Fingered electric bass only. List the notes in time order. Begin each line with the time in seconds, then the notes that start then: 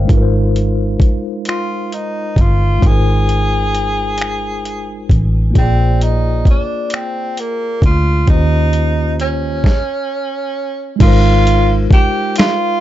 0.10 G#1
1.01 muted fingered electric bass stroke
2.37 G1
2.84 G#1
5.11 A1
5.56 A#1
6.47 muted fingered electric bass stroke
7.83 D2
8.29 D#2
11.01 G#1
11.92 muted fingered electric bass stroke